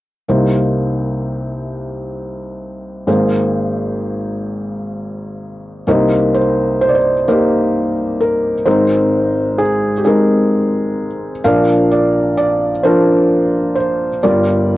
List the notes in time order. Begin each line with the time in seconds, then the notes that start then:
0.28 C2 C3 A#3 D#4 C5
3.07 G#1 G#2 A#3 G#4 C5
5.87 C2 C3 A#3 D#4 G4 A#4 C5 D#5
6.34 C5
6.81 C5
6.89 D5
6.95 C5
7.28 A#3 D#4 G4 A#4 C5
8.20 A#4
8.65 G#1 G#2 G#3 C4 D#4 A#4 C5
9.58 G#4
9.98 G4
10.05 G#3 C4 D#4 G#4 A#4
11.44 A#1 A#2 F3 D4 A#4 D5 F5
11.91 D5
12.37 D5
12.83 F3 D4 F4 A#4 C5
13.75 C5
14.23 G1 G2 G3 F4 A#4 D5